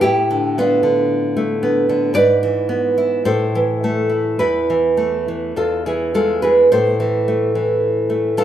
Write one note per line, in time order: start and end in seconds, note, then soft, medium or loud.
0.01 2.12 A2 medium
0.01 0.53 E4 medium
0.01 0.54 G4 medium
0.31 0.82 D3 soft
0.58 1.36 B3 soft
0.58 1.61 D4 soft
0.58 1.60 F4 medium
0.83 1.88 D3 soft
1.37 2.16 A3 soft
1.63 2.16 B3 medium
1.89 2.16 D3 soft
2.14 3.21 G#2 medium
2.14 3.22 B4 medium
2.14 3.21 D5 medium
2.43 3.26 E3 soft
2.69 3.25 B3 soft
2.98 3.25 E4 soft
3.25 4.36 A2 medium
3.25 4.36 A4 medium
3.25 4.36 C5 medium
3.55 4.39 E3 soft
3.84 4.41 A3 soft
4.09 4.39 E4 soft
4.39 5.51 E2 soft
4.39 5.51 E4 soft
4.39 5.51 B4 medium
4.70 5.27 E3 soft
4.97 5.55 A3 soft
5.28 5.56 E3 soft
5.56 6.69 E2 soft
5.56 5.83 F4 soft
5.56 5.85 A4 soft
5.86 6.41 E3 soft
5.86 6.14 E4 soft
5.86 6.15 G#4 medium
6.14 6.72 G#3 soft
6.14 6.42 F4 soft
6.14 6.43 A4 medium
6.42 6.72 E3 soft
6.42 6.70 G#4 soft
6.42 6.71 B4 medium
6.72 8.44 A2 soft
6.72 8.34 A4 medium
6.72 8.33 C5 medium
7.00 7.54 E3 soft
7.28 8.08 A3 soft
7.55 8.36 E3 soft
8.10 8.44 A3 soft
8.37 8.44 E3 soft
8.37 8.44 F4 medium
8.37 8.44 A4 medium